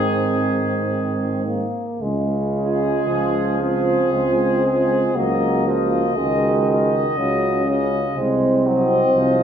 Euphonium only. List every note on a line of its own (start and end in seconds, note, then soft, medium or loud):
0.00 1.41 C4 soft
1.46 2.03 A#3 soft
2.02 3.60 G#3 medium
3.61 5.17 C4 medium
5.16 6.18 A#3 soft
6.17 7.00 G#3 medium
7.17 7.66 F#3 medium
7.67 7.99 C#4 medium
8.17 9.43 C4 medium